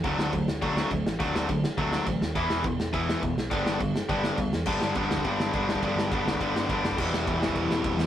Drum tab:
CC |x---x---x---x---|x---x---x---x---|x---x---x---x---|x---x---x---x---|
RD |----------------|----------------|----------------|----------------|
SD |--o---o---o---o-|--o---o---o---o-|--o---o---o---o-|--o---o---o---o-|
BD |o---o---o---o---|o---o---o---o---|o---o---o---o---|o---o---o---o---|

CC |x---------------|----------------|x---------------|
RD |----x---x---x---|x---x---x---x---|----x---x---x---|
SD |--o---o---o---o-|--o---o---o---o-|--o---o---o---o-|
BD |o---o--oo---o--o|o---o--oo---o--o|o---o--oo---o---|